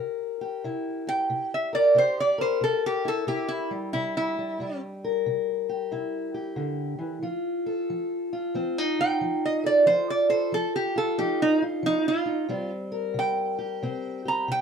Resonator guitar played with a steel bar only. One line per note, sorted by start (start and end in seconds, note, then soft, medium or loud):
1.09 1.51 G5 medium
1.54 1.74 E5 medium
1.75 1.96 D5 medium
1.98 2.18 C5 medium
2.20 2.40 D5 medium
2.41 2.62 C5 medium
2.64 2.84 A4 medium
2.86 3.06 G4 medium
3.08 3.28 A4 medium
3.28 3.49 G4 medium
3.48 3.70 E4 medium
3.93 4.15 E4 medium
4.17 4.80 E4 medium
9.01 9.42 G5 loud
9.45 9.65 D#5 medium
9.66 9.86 D5 medium
9.87 10.08 C5 medium
10.10 10.29 D5 medium
10.30 10.51 C5 medium
10.54 10.75 A4 medium
10.76 10.96 G4 medium
10.98 11.18 A4 medium
11.19 11.40 G4 medium
11.42 11.63 D#4 medium
11.86 12.06 D#4 loud
12.08 12.71 F4 medium
13.19 14.22 G5 medium
14.28 14.49 A#5 medium
14.52 14.61 G5 loud